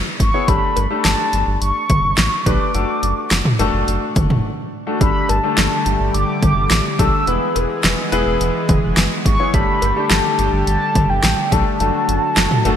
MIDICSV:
0, 0, Header, 1, 6, 480
1, 0, Start_track
1, 0, Tempo, 566038
1, 409, Time_signature, 4, 2, 24, 8
1, 10824, End_track
2, 0, Start_track
2, 0, Title_t, "Soft synth lead"
2, 0, Program_c, 0, 80
2, 168, Note_on_c, 0, 85, 99
2, 408, Note_on_c, 0, 83, 109
2, 420, Note_off_c, 0, 85, 0
2, 883, Note_off_c, 0, 83, 0
2, 888, Note_on_c, 0, 81, 97
2, 1335, Note_off_c, 0, 81, 0
2, 1369, Note_on_c, 0, 85, 117
2, 2088, Note_on_c, 0, 86, 118
2, 2101, Note_off_c, 0, 85, 0
2, 3048, Note_off_c, 0, 86, 0
2, 4248, Note_on_c, 0, 83, 100
2, 4489, Note_on_c, 0, 81, 102
2, 4502, Note_off_c, 0, 83, 0
2, 5204, Note_off_c, 0, 81, 0
2, 5209, Note_on_c, 0, 86, 112
2, 5929, Note_on_c, 0, 88, 117
2, 5941, Note_off_c, 0, 86, 0
2, 6409, Note_off_c, 0, 88, 0
2, 7850, Note_on_c, 0, 85, 114
2, 8089, Note_on_c, 0, 83, 121
2, 8102, Note_off_c, 0, 85, 0
2, 8569, Note_on_c, 0, 81, 106
2, 8582, Note_off_c, 0, 83, 0
2, 9044, Note_off_c, 0, 81, 0
2, 9050, Note_on_c, 0, 81, 109
2, 9409, Note_on_c, 0, 79, 94
2, 9422, Note_off_c, 0, 81, 0
2, 9771, Note_on_c, 0, 81, 110
2, 9783, Note_off_c, 0, 79, 0
2, 10824, Note_off_c, 0, 81, 0
2, 10824, End_track
3, 0, Start_track
3, 0, Title_t, "Grand piano"
3, 0, Program_c, 1, 0
3, 289, Note_on_c, 1, 59, 80
3, 289, Note_on_c, 1, 64, 74
3, 289, Note_on_c, 1, 68, 71
3, 289, Note_on_c, 1, 73, 86
3, 383, Note_off_c, 1, 59, 0
3, 383, Note_off_c, 1, 64, 0
3, 383, Note_off_c, 1, 68, 0
3, 383, Note_off_c, 1, 73, 0
3, 408, Note_on_c, 1, 57, 74
3, 408, Note_on_c, 1, 62, 70
3, 408, Note_on_c, 1, 67, 70
3, 408, Note_on_c, 1, 69, 86
3, 692, Note_off_c, 1, 57, 0
3, 692, Note_off_c, 1, 62, 0
3, 692, Note_off_c, 1, 67, 0
3, 692, Note_off_c, 1, 69, 0
3, 768, Note_on_c, 1, 57, 78
3, 768, Note_on_c, 1, 62, 72
3, 768, Note_on_c, 1, 67, 72
3, 768, Note_on_c, 1, 69, 87
3, 1525, Note_off_c, 1, 57, 0
3, 1525, Note_off_c, 1, 62, 0
3, 1525, Note_off_c, 1, 67, 0
3, 1525, Note_off_c, 1, 69, 0
3, 2088, Note_on_c, 1, 57, 79
3, 2088, Note_on_c, 1, 62, 70
3, 2088, Note_on_c, 1, 67, 72
3, 2088, Note_on_c, 1, 71, 86
3, 2277, Note_off_c, 1, 57, 0
3, 2277, Note_off_c, 1, 62, 0
3, 2277, Note_off_c, 1, 67, 0
3, 2277, Note_off_c, 1, 71, 0
3, 2328, Note_on_c, 1, 57, 76
3, 2328, Note_on_c, 1, 62, 69
3, 2328, Note_on_c, 1, 66, 71
3, 2329, Note_on_c, 1, 69, 82
3, 2896, Note_off_c, 1, 57, 0
3, 2896, Note_off_c, 1, 62, 0
3, 2896, Note_off_c, 1, 66, 0
3, 2896, Note_off_c, 1, 69, 0
3, 3048, Note_on_c, 1, 57, 92
3, 3048, Note_on_c, 1, 62, 87
3, 3048, Note_on_c, 1, 66, 88
3, 3048, Note_on_c, 1, 69, 106
3, 3805, Note_off_c, 1, 57, 0
3, 3805, Note_off_c, 1, 62, 0
3, 3805, Note_off_c, 1, 66, 0
3, 3805, Note_off_c, 1, 69, 0
3, 4128, Note_on_c, 1, 57, 76
3, 4128, Note_on_c, 1, 62, 71
3, 4128, Note_on_c, 1, 66, 71
3, 4128, Note_on_c, 1, 69, 85
3, 4223, Note_off_c, 1, 57, 0
3, 4223, Note_off_c, 1, 62, 0
3, 4223, Note_off_c, 1, 66, 0
3, 4223, Note_off_c, 1, 69, 0
3, 4248, Note_on_c, 1, 57, 74
3, 4248, Note_on_c, 1, 62, 72
3, 4248, Note_on_c, 1, 67, 69
3, 4248, Note_on_c, 1, 69, 85
3, 4532, Note_off_c, 1, 57, 0
3, 4532, Note_off_c, 1, 62, 0
3, 4532, Note_off_c, 1, 67, 0
3, 4532, Note_off_c, 1, 69, 0
3, 4609, Note_on_c, 1, 57, 77
3, 4609, Note_on_c, 1, 62, 71
3, 4609, Note_on_c, 1, 69, 86
3, 4610, Note_on_c, 1, 67, 71
3, 5366, Note_off_c, 1, 57, 0
3, 5366, Note_off_c, 1, 62, 0
3, 5366, Note_off_c, 1, 67, 0
3, 5366, Note_off_c, 1, 69, 0
3, 5928, Note_on_c, 1, 62, 73
3, 5928, Note_on_c, 1, 67, 75
3, 5928, Note_on_c, 1, 69, 88
3, 5929, Note_on_c, 1, 57, 80
3, 6118, Note_off_c, 1, 57, 0
3, 6118, Note_off_c, 1, 62, 0
3, 6118, Note_off_c, 1, 67, 0
3, 6118, Note_off_c, 1, 69, 0
3, 6168, Note_on_c, 1, 59, 75
3, 6168, Note_on_c, 1, 64, 70
3, 6168, Note_on_c, 1, 68, 69
3, 6168, Note_on_c, 1, 71, 85
3, 6736, Note_off_c, 1, 59, 0
3, 6736, Note_off_c, 1, 64, 0
3, 6736, Note_off_c, 1, 68, 0
3, 6736, Note_off_c, 1, 71, 0
3, 6887, Note_on_c, 1, 71, 107
3, 6888, Note_on_c, 1, 59, 94
3, 6888, Note_on_c, 1, 64, 87
3, 6888, Note_on_c, 1, 68, 87
3, 7645, Note_off_c, 1, 59, 0
3, 7645, Note_off_c, 1, 64, 0
3, 7645, Note_off_c, 1, 68, 0
3, 7645, Note_off_c, 1, 71, 0
3, 7968, Note_on_c, 1, 73, 90
3, 7969, Note_on_c, 1, 59, 79
3, 7969, Note_on_c, 1, 64, 73
3, 7969, Note_on_c, 1, 68, 75
3, 8063, Note_off_c, 1, 59, 0
3, 8063, Note_off_c, 1, 64, 0
3, 8063, Note_off_c, 1, 68, 0
3, 8063, Note_off_c, 1, 73, 0
3, 8088, Note_on_c, 1, 62, 71
3, 8089, Note_on_c, 1, 57, 77
3, 8089, Note_on_c, 1, 67, 69
3, 8089, Note_on_c, 1, 69, 84
3, 8372, Note_off_c, 1, 57, 0
3, 8372, Note_off_c, 1, 62, 0
3, 8372, Note_off_c, 1, 67, 0
3, 8372, Note_off_c, 1, 69, 0
3, 8449, Note_on_c, 1, 57, 78
3, 8449, Note_on_c, 1, 62, 72
3, 8449, Note_on_c, 1, 67, 73
3, 8449, Note_on_c, 1, 69, 87
3, 9206, Note_off_c, 1, 57, 0
3, 9206, Note_off_c, 1, 62, 0
3, 9206, Note_off_c, 1, 67, 0
3, 9206, Note_off_c, 1, 69, 0
3, 9769, Note_on_c, 1, 57, 80
3, 9769, Note_on_c, 1, 62, 73
3, 9769, Note_on_c, 1, 67, 71
3, 9769, Note_on_c, 1, 69, 85
3, 9958, Note_off_c, 1, 57, 0
3, 9958, Note_off_c, 1, 62, 0
3, 9958, Note_off_c, 1, 67, 0
3, 9958, Note_off_c, 1, 69, 0
3, 10008, Note_on_c, 1, 57, 74
3, 10008, Note_on_c, 1, 62, 69
3, 10008, Note_on_c, 1, 69, 85
3, 10009, Note_on_c, 1, 66, 71
3, 10576, Note_off_c, 1, 57, 0
3, 10576, Note_off_c, 1, 62, 0
3, 10576, Note_off_c, 1, 66, 0
3, 10576, Note_off_c, 1, 69, 0
3, 10729, Note_on_c, 1, 62, 86
3, 10729, Note_on_c, 1, 66, 89
3, 10729, Note_on_c, 1, 69, 104
3, 10730, Note_on_c, 1, 57, 93
3, 10824, Note_off_c, 1, 57, 0
3, 10824, Note_off_c, 1, 62, 0
3, 10824, Note_off_c, 1, 66, 0
3, 10824, Note_off_c, 1, 69, 0
3, 10824, End_track
4, 0, Start_track
4, 0, Title_t, "Analog synth pad"
4, 0, Program_c, 2, 89
4, 4249, Note_on_c, 2, 50, 84
4, 4249, Note_on_c, 2, 55, 75
4, 4249, Note_on_c, 2, 57, 77
4, 4249, Note_on_c, 2, 67, 91
4, 6150, Note_off_c, 2, 50, 0
4, 6150, Note_off_c, 2, 55, 0
4, 6150, Note_off_c, 2, 57, 0
4, 6150, Note_off_c, 2, 67, 0
4, 6169, Note_on_c, 2, 52, 86
4, 6169, Note_on_c, 2, 56, 78
4, 6169, Note_on_c, 2, 59, 80
4, 6170, Note_on_c, 2, 68, 94
4, 8070, Note_off_c, 2, 52, 0
4, 8070, Note_off_c, 2, 56, 0
4, 8070, Note_off_c, 2, 59, 0
4, 8070, Note_off_c, 2, 68, 0
4, 8089, Note_on_c, 2, 50, 88
4, 8089, Note_on_c, 2, 55, 78
4, 8089, Note_on_c, 2, 57, 79
4, 8089, Note_on_c, 2, 67, 95
4, 9990, Note_off_c, 2, 50, 0
4, 9990, Note_off_c, 2, 55, 0
4, 9990, Note_off_c, 2, 67, 0
4, 10008, Note_on_c, 2, 50, 82
4, 10008, Note_on_c, 2, 54, 79
4, 10008, Note_on_c, 2, 66, 92
4, 10824, Note_off_c, 2, 50, 0
4, 10824, Note_off_c, 2, 54, 0
4, 10824, Note_off_c, 2, 57, 0
4, 10824, Note_off_c, 2, 66, 0
4, 10824, End_track
5, 0, Start_track
5, 0, Title_t, "Analog synth bass"
5, 0, Program_c, 3, 38
5, 169, Note_on_c, 3, 32, 95
5, 258, Note_off_c, 3, 32, 0
5, 409, Note_on_c, 3, 31, 109
5, 498, Note_off_c, 3, 31, 0
5, 649, Note_on_c, 3, 31, 104
5, 738, Note_off_c, 3, 31, 0
5, 889, Note_on_c, 3, 31, 106
5, 978, Note_off_c, 3, 31, 0
5, 1129, Note_on_c, 3, 31, 99
5, 1218, Note_off_c, 3, 31, 0
5, 1248, Note_on_c, 3, 31, 103
5, 1338, Note_off_c, 3, 31, 0
5, 1369, Note_on_c, 3, 31, 110
5, 1458, Note_off_c, 3, 31, 0
5, 1610, Note_on_c, 3, 31, 97
5, 1698, Note_off_c, 3, 31, 0
5, 1729, Note_on_c, 3, 31, 99
5, 1818, Note_off_c, 3, 31, 0
5, 1849, Note_on_c, 3, 33, 95
5, 1938, Note_off_c, 3, 33, 0
5, 2089, Note_on_c, 3, 35, 92
5, 2178, Note_off_c, 3, 35, 0
5, 2328, Note_on_c, 3, 30, 107
5, 2417, Note_off_c, 3, 30, 0
5, 2568, Note_on_c, 3, 30, 96
5, 2657, Note_off_c, 3, 30, 0
5, 2808, Note_on_c, 3, 30, 107
5, 2897, Note_off_c, 3, 30, 0
5, 3048, Note_on_c, 3, 30, 108
5, 3137, Note_off_c, 3, 30, 0
5, 3168, Note_on_c, 3, 30, 107
5, 3257, Note_off_c, 3, 30, 0
5, 3288, Note_on_c, 3, 30, 106
5, 3377, Note_off_c, 3, 30, 0
5, 3530, Note_on_c, 3, 30, 107
5, 3618, Note_off_c, 3, 30, 0
5, 3648, Note_on_c, 3, 30, 108
5, 3737, Note_off_c, 3, 30, 0
5, 4248, Note_on_c, 3, 31, 111
5, 4337, Note_off_c, 3, 31, 0
5, 4489, Note_on_c, 3, 31, 113
5, 4578, Note_off_c, 3, 31, 0
5, 4729, Note_on_c, 3, 31, 112
5, 4818, Note_off_c, 3, 31, 0
5, 4968, Note_on_c, 3, 31, 105
5, 5057, Note_off_c, 3, 31, 0
5, 5089, Note_on_c, 3, 31, 103
5, 5178, Note_off_c, 3, 31, 0
5, 5209, Note_on_c, 3, 31, 111
5, 5298, Note_off_c, 3, 31, 0
5, 5450, Note_on_c, 3, 31, 102
5, 5538, Note_off_c, 3, 31, 0
5, 5568, Note_on_c, 3, 31, 98
5, 5657, Note_off_c, 3, 31, 0
5, 5688, Note_on_c, 3, 33, 98
5, 5778, Note_off_c, 3, 33, 0
5, 5929, Note_on_c, 3, 35, 91
5, 6018, Note_off_c, 3, 35, 0
5, 6169, Note_on_c, 3, 28, 106
5, 6258, Note_off_c, 3, 28, 0
5, 6409, Note_on_c, 3, 28, 99
5, 6498, Note_off_c, 3, 28, 0
5, 6649, Note_on_c, 3, 28, 107
5, 6738, Note_off_c, 3, 28, 0
5, 6888, Note_on_c, 3, 28, 106
5, 6978, Note_off_c, 3, 28, 0
5, 7008, Note_on_c, 3, 28, 97
5, 7097, Note_off_c, 3, 28, 0
5, 7128, Note_on_c, 3, 28, 109
5, 7217, Note_off_c, 3, 28, 0
5, 7370, Note_on_c, 3, 28, 104
5, 7458, Note_off_c, 3, 28, 0
5, 7488, Note_on_c, 3, 28, 102
5, 7577, Note_off_c, 3, 28, 0
5, 7608, Note_on_c, 3, 30, 101
5, 7697, Note_off_c, 3, 30, 0
5, 7849, Note_on_c, 3, 32, 96
5, 7938, Note_off_c, 3, 32, 0
5, 8089, Note_on_c, 3, 31, 111
5, 8178, Note_off_c, 3, 31, 0
5, 8328, Note_on_c, 3, 31, 111
5, 8417, Note_off_c, 3, 31, 0
5, 8568, Note_on_c, 3, 31, 104
5, 8657, Note_off_c, 3, 31, 0
5, 8809, Note_on_c, 3, 31, 100
5, 8898, Note_off_c, 3, 31, 0
5, 8928, Note_on_c, 3, 31, 101
5, 9017, Note_off_c, 3, 31, 0
5, 9048, Note_on_c, 3, 31, 106
5, 9138, Note_off_c, 3, 31, 0
5, 9290, Note_on_c, 3, 31, 99
5, 9379, Note_off_c, 3, 31, 0
5, 9409, Note_on_c, 3, 31, 96
5, 9498, Note_off_c, 3, 31, 0
5, 9528, Note_on_c, 3, 33, 93
5, 9618, Note_off_c, 3, 33, 0
5, 9769, Note_on_c, 3, 35, 96
5, 9858, Note_off_c, 3, 35, 0
5, 10009, Note_on_c, 3, 30, 104
5, 10098, Note_off_c, 3, 30, 0
5, 10249, Note_on_c, 3, 30, 98
5, 10338, Note_off_c, 3, 30, 0
5, 10488, Note_on_c, 3, 30, 109
5, 10577, Note_off_c, 3, 30, 0
5, 10728, Note_on_c, 3, 30, 110
5, 10817, Note_off_c, 3, 30, 0
5, 10824, End_track
6, 0, Start_track
6, 0, Title_t, "Drums"
6, 169, Note_on_c, 9, 36, 97
6, 171, Note_on_c, 9, 42, 77
6, 254, Note_off_c, 9, 36, 0
6, 256, Note_off_c, 9, 42, 0
6, 408, Note_on_c, 9, 42, 70
6, 409, Note_on_c, 9, 36, 118
6, 493, Note_off_c, 9, 42, 0
6, 494, Note_off_c, 9, 36, 0
6, 648, Note_on_c, 9, 56, 71
6, 650, Note_on_c, 9, 42, 80
6, 732, Note_off_c, 9, 56, 0
6, 735, Note_off_c, 9, 42, 0
6, 889, Note_on_c, 9, 38, 119
6, 890, Note_on_c, 9, 42, 72
6, 974, Note_off_c, 9, 38, 0
6, 974, Note_off_c, 9, 42, 0
6, 1129, Note_on_c, 9, 42, 73
6, 1213, Note_off_c, 9, 42, 0
6, 1371, Note_on_c, 9, 42, 76
6, 1456, Note_off_c, 9, 42, 0
6, 1608, Note_on_c, 9, 42, 77
6, 1609, Note_on_c, 9, 47, 99
6, 1610, Note_on_c, 9, 36, 103
6, 1693, Note_off_c, 9, 42, 0
6, 1694, Note_off_c, 9, 36, 0
6, 1694, Note_off_c, 9, 47, 0
6, 1846, Note_on_c, 9, 38, 125
6, 1849, Note_on_c, 9, 42, 70
6, 1931, Note_off_c, 9, 38, 0
6, 1934, Note_off_c, 9, 42, 0
6, 2088, Note_on_c, 9, 36, 100
6, 2090, Note_on_c, 9, 42, 79
6, 2173, Note_off_c, 9, 36, 0
6, 2175, Note_off_c, 9, 42, 0
6, 2328, Note_on_c, 9, 42, 70
6, 2413, Note_off_c, 9, 42, 0
6, 2570, Note_on_c, 9, 42, 81
6, 2655, Note_off_c, 9, 42, 0
6, 2809, Note_on_c, 9, 38, 118
6, 2809, Note_on_c, 9, 42, 75
6, 2894, Note_off_c, 9, 38, 0
6, 2894, Note_off_c, 9, 42, 0
6, 2929, Note_on_c, 9, 45, 101
6, 3013, Note_off_c, 9, 45, 0
6, 3046, Note_on_c, 9, 56, 69
6, 3048, Note_on_c, 9, 42, 71
6, 3131, Note_off_c, 9, 56, 0
6, 3133, Note_off_c, 9, 42, 0
6, 3290, Note_on_c, 9, 42, 75
6, 3375, Note_off_c, 9, 42, 0
6, 3528, Note_on_c, 9, 42, 77
6, 3530, Note_on_c, 9, 36, 100
6, 3530, Note_on_c, 9, 47, 99
6, 3613, Note_off_c, 9, 42, 0
6, 3614, Note_off_c, 9, 36, 0
6, 3614, Note_off_c, 9, 47, 0
6, 3649, Note_on_c, 9, 45, 99
6, 3733, Note_off_c, 9, 45, 0
6, 4248, Note_on_c, 9, 36, 117
6, 4248, Note_on_c, 9, 42, 69
6, 4333, Note_off_c, 9, 36, 0
6, 4333, Note_off_c, 9, 42, 0
6, 4487, Note_on_c, 9, 56, 68
6, 4490, Note_on_c, 9, 42, 78
6, 4572, Note_off_c, 9, 56, 0
6, 4575, Note_off_c, 9, 42, 0
6, 4729, Note_on_c, 9, 38, 116
6, 4730, Note_on_c, 9, 42, 70
6, 4814, Note_off_c, 9, 38, 0
6, 4815, Note_off_c, 9, 42, 0
6, 4969, Note_on_c, 9, 42, 73
6, 5054, Note_off_c, 9, 42, 0
6, 5211, Note_on_c, 9, 42, 75
6, 5296, Note_off_c, 9, 42, 0
6, 5448, Note_on_c, 9, 42, 76
6, 5450, Note_on_c, 9, 36, 95
6, 5450, Note_on_c, 9, 47, 96
6, 5533, Note_off_c, 9, 42, 0
6, 5534, Note_off_c, 9, 36, 0
6, 5535, Note_off_c, 9, 47, 0
6, 5687, Note_on_c, 9, 38, 122
6, 5690, Note_on_c, 9, 42, 72
6, 5772, Note_off_c, 9, 38, 0
6, 5775, Note_off_c, 9, 42, 0
6, 5929, Note_on_c, 9, 36, 101
6, 5931, Note_on_c, 9, 42, 81
6, 6014, Note_off_c, 9, 36, 0
6, 6016, Note_off_c, 9, 42, 0
6, 6169, Note_on_c, 9, 42, 69
6, 6253, Note_off_c, 9, 42, 0
6, 6408, Note_on_c, 9, 56, 71
6, 6411, Note_on_c, 9, 42, 79
6, 6493, Note_off_c, 9, 56, 0
6, 6495, Note_off_c, 9, 42, 0
6, 6649, Note_on_c, 9, 38, 117
6, 6650, Note_on_c, 9, 42, 72
6, 6734, Note_off_c, 9, 38, 0
6, 6735, Note_off_c, 9, 42, 0
6, 6889, Note_on_c, 9, 42, 72
6, 6974, Note_off_c, 9, 42, 0
6, 7131, Note_on_c, 9, 42, 76
6, 7216, Note_off_c, 9, 42, 0
6, 7369, Note_on_c, 9, 42, 77
6, 7370, Note_on_c, 9, 36, 101
6, 7370, Note_on_c, 9, 47, 99
6, 7453, Note_off_c, 9, 42, 0
6, 7455, Note_off_c, 9, 36, 0
6, 7455, Note_off_c, 9, 47, 0
6, 7607, Note_on_c, 9, 38, 126
6, 7610, Note_on_c, 9, 42, 73
6, 7692, Note_off_c, 9, 38, 0
6, 7695, Note_off_c, 9, 42, 0
6, 7849, Note_on_c, 9, 36, 101
6, 7851, Note_on_c, 9, 42, 79
6, 7934, Note_off_c, 9, 36, 0
6, 7935, Note_off_c, 9, 42, 0
6, 8088, Note_on_c, 9, 42, 71
6, 8089, Note_on_c, 9, 36, 116
6, 8173, Note_off_c, 9, 42, 0
6, 8174, Note_off_c, 9, 36, 0
6, 8327, Note_on_c, 9, 56, 69
6, 8330, Note_on_c, 9, 42, 82
6, 8412, Note_off_c, 9, 56, 0
6, 8415, Note_off_c, 9, 42, 0
6, 8569, Note_on_c, 9, 38, 115
6, 8570, Note_on_c, 9, 42, 72
6, 8654, Note_off_c, 9, 38, 0
6, 8654, Note_off_c, 9, 42, 0
6, 8809, Note_on_c, 9, 42, 71
6, 8894, Note_off_c, 9, 42, 0
6, 9051, Note_on_c, 9, 42, 77
6, 9136, Note_off_c, 9, 42, 0
6, 9289, Note_on_c, 9, 42, 77
6, 9290, Note_on_c, 9, 36, 101
6, 9290, Note_on_c, 9, 47, 101
6, 9374, Note_off_c, 9, 42, 0
6, 9375, Note_off_c, 9, 36, 0
6, 9375, Note_off_c, 9, 47, 0
6, 9527, Note_on_c, 9, 38, 122
6, 9530, Note_on_c, 9, 42, 70
6, 9612, Note_off_c, 9, 38, 0
6, 9615, Note_off_c, 9, 42, 0
6, 9769, Note_on_c, 9, 36, 99
6, 9771, Note_on_c, 9, 42, 80
6, 9854, Note_off_c, 9, 36, 0
6, 9856, Note_off_c, 9, 42, 0
6, 10009, Note_on_c, 9, 42, 69
6, 10094, Note_off_c, 9, 42, 0
6, 10251, Note_on_c, 9, 42, 80
6, 10335, Note_off_c, 9, 42, 0
6, 10489, Note_on_c, 9, 38, 114
6, 10490, Note_on_c, 9, 42, 72
6, 10574, Note_off_c, 9, 38, 0
6, 10575, Note_off_c, 9, 42, 0
6, 10609, Note_on_c, 9, 45, 104
6, 10694, Note_off_c, 9, 45, 0
6, 10727, Note_on_c, 9, 56, 69
6, 10729, Note_on_c, 9, 42, 68
6, 10812, Note_off_c, 9, 56, 0
6, 10814, Note_off_c, 9, 42, 0
6, 10824, End_track
0, 0, End_of_file